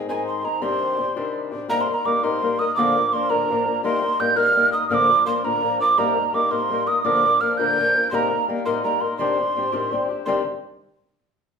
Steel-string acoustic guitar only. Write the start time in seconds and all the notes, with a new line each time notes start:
0.09 G#2 D#3 G#3 C4 D#4 G#4
0.44 G#3 C4 D#4 G#4
0.61 C3 D#3 G3 C4 D4 G4
0.98 G3 C4 D4 G4
1.16 C3 D#3 G3 C4 D4 G4
1.52 G3 C4 D4 G4
1.68 C3 G3 A#3 D#4 A#4
1.87 A#3 A#4
2.05 G3 A#3 D#4 A#4
2.23 C3 G3 A#3 D#4 A#4
2.42 G3 A#3 D#4 A#4
2.59 A#3 D#4 A#4
2.77 A#2 D3 F3 A#3 D4 A#4
2.95 F3 A#3 D4 A#4
3.13 F3 A#3 D4 A#4
3.30 A#2 D3 F3 A#3 D4 A#4
3.50 F3 A#3 D4 A#4
3.66 F3 A#3 D4 A#4
3.83 C3 G3 A#3 D#4 A#4
4.02 A#3 D#4 A#4
4.19 G3 A#3 D#4 A#4
4.36 C3 G3 A#3 D#4 A#4
4.55 G3 A#3 D#4 A#4
4.72 A#3 D#4 A#4
4.89 A#2 D3 F3 A#3 D4 A#4
5.09 F3 A#3 D4 A#4
5.26 F3 A#3 D4 A#4
5.44 A#2 D3 F3 A#3 D4 A#4
5.62 F3 A#3 D4 A#4
5.80 F3 A#3 D4 A#4
5.98 C3 G3 A#3 D#4 A#4
6.16 A#3 D#4 A#4
6.33 G3 A#3 D#4 A#4
6.51 C3 G3 A#3 D#4 A#4
6.70 G3 A#3 D#4 A#4
6.86 A#3 D#4 A#4
7.04 A#2 D3 F3 A#3 D4 A#4
7.23 F3 A#3 D4 A#4
7.40 F3 A#3 D4 A#4
7.59 A#2 D3 F3 A#3 D4 A#4
7.78 F3 A#3 D4 A#4
7.95 F3 A#3 D4 A#4
8.12 C3 G3 A#3 D#4 A#4
8.31 A#3 D#4 A#4
8.48 G3 A#3 D#4 A#4
8.66 C3 G3 A#3 D#4 A#4
8.84 G3 A#3 D#4 A#4
9.02 A#3 D#4 A#4
9.19 C3 D#3 G3 C4 D4 G4
9.38 G3 C4 D4 G4
9.56 G3 C4 D4 G4
9.72 C3 D#3 G3 C4 D4 G4
9.91 G3 C4 D4 G4
10.08 G3 C4 D4 G4
10.26 C3 D#3 G3 C4 D4 G4